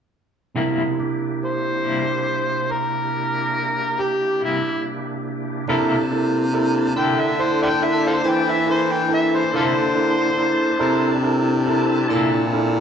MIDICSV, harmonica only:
0, 0, Header, 1, 2, 480
1, 0, Start_track
1, 0, Tempo, 854701
1, 315, Time_signature, 12, 3, 24, 8
1, 7189, End_track
2, 0, Start_track
2, 0, Title_t, "Harmonica"
2, 0, Program_c, 0, 22
2, 813, Note_on_c, 0, 72, 61
2, 1523, Note_on_c, 0, 70, 63
2, 1531, Note_off_c, 0, 72, 0
2, 2246, Note_on_c, 0, 67, 66
2, 2254, Note_off_c, 0, 70, 0
2, 2474, Note_off_c, 0, 67, 0
2, 2494, Note_on_c, 0, 64, 67
2, 2718, Note_off_c, 0, 64, 0
2, 3925, Note_on_c, 0, 79, 70
2, 4042, Note_on_c, 0, 76, 59
2, 4050, Note_off_c, 0, 79, 0
2, 4165, Note_on_c, 0, 72, 68
2, 4173, Note_off_c, 0, 76, 0
2, 4272, Note_off_c, 0, 72, 0
2, 4283, Note_on_c, 0, 74, 54
2, 4283, Note_on_c, 0, 76, 54
2, 4283, Note_on_c, 0, 79, 77
2, 4317, Note_off_c, 0, 76, 0
2, 4319, Note_off_c, 0, 74, 0
2, 4404, Note_on_c, 0, 76, 68
2, 4412, Note_off_c, 0, 79, 0
2, 4511, Note_off_c, 0, 76, 0
2, 4531, Note_on_c, 0, 65, 47
2, 4531, Note_on_c, 0, 69, 47
2, 4531, Note_on_c, 0, 72, 67
2, 4572, Note_off_c, 0, 65, 0
2, 4576, Note_off_c, 0, 69, 0
2, 4655, Note_on_c, 0, 79, 68
2, 4664, Note_off_c, 0, 72, 0
2, 4775, Note_on_c, 0, 76, 63
2, 4784, Note_off_c, 0, 79, 0
2, 4877, Note_off_c, 0, 76, 0
2, 4889, Note_on_c, 0, 72, 74
2, 5010, Note_on_c, 0, 79, 67
2, 5018, Note_off_c, 0, 72, 0
2, 5114, Note_off_c, 0, 79, 0
2, 5134, Note_on_c, 0, 76, 73
2, 5251, Note_on_c, 0, 72, 67
2, 5260, Note_off_c, 0, 76, 0
2, 5355, Note_off_c, 0, 72, 0
2, 5367, Note_on_c, 0, 65, 51
2, 5367, Note_on_c, 0, 69, 51
2, 5367, Note_on_c, 0, 72, 73
2, 5414, Note_off_c, 0, 69, 0
2, 5415, Note_off_c, 0, 65, 0
2, 6297, Note_off_c, 0, 72, 0
2, 7189, End_track
0, 0, End_of_file